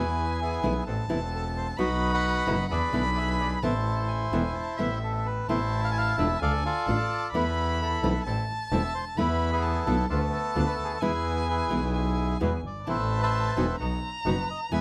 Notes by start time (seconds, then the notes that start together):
Already playing: E2 B3 E4 G#4 B4 G#5
0.42 B3 E4 G#4
0.63 B1 C3 E3 A3 B3 E4 G#4
0.86 A1 B3 C4 A4 A5
1.09 E1 C3 E3 A3 B3 C4 E4 A4
1.35 A4
1.57 C5
1.77 B1 B2 F#3 B3 D#4 F#4 B4 D#5 B5
2.14 B4 D#5 F#5
2.47 F#1 B2 D3 G#3 B3 D#4 E4 F#4
2.70 E2 D4 E4 G#4 B4 D5 B5
2.93 B1 B2 D3 G#3 B3 D4 E4 G#4
3.17 E5
3.41 D5
3.62 A1 C3 E3 A3 B3 C4 E4 A4 C5 A5
4.09 G#5
4.32 E1 C3 E3 A3 B3 C4 E4 A4
4.55 A5
4.77 A1 C3 E3 A3 B3 C4 E4 A4 E5
5.04 A4
5.26 B4
5.48 A1 C3 E3 A3 B3 C4 E4 A4 C5 A5
5.84 F5
5.91 G#5
5.98 F5
6.18 E1 D3 A3 B3 C4 D4 F4 A4 E5
6.39 D2 D4 F4 A4 D5 F5 G#5
6.65 F4 A4 D5
6.87 A1 D3 A3 D4 F4 A4 A5
7.32 E2 E3 A3 B3 E4 A4 B4 B5
7.82 E4 A4
8.02 B1 E3 A3 B3 C4 E4 A4
8.25 A1 C4 E4 A4 A5
8.71 E1 E3 A3 C4 E4 A4 E5
8.94 C5
9.16 E2 E3 A3 B3 E4 B4 B5
9.52 B3 E4 G#4
9.62 A5
9.86 B1 D3 A3 B3 E4 F4 A4
10.09 D2 A3 B3 D4 F4 A4 A5
10.32 A4
10.55 D2 D3 A3 B3 D4 F4 A4
10.67 B4
10.76 A4
10.80 D2
10.84 G#4
10.94 A4
11.01 E2 B2 E3 G#3 B3 E4 G#4 B4 G#5
11.49 E4 G#4 B4
11.70 B1 B2 E3 G#3 B3 E4 G#4
11.93 G#5
12.40 E2 B2 E3 G#3 B3 E4 G#4 B4
12.65 G1 D5
12.86 A1 C3 E3 A3 B3 C4 E4 A4 B4 C5 E5 A5
13.23 C5 E5 A5
13.56 E1 B2 F#3 B3 C4 D#4 F#4 A4 G#5
13.79 B1 B3 D#4 F#4 A#5
14.25 F#1 B2 F#3 B3 D#4 F#4 B4
14.51 D#5
14.71 E2 B2 E3 G#3 B3 E4 B4 E5 G#5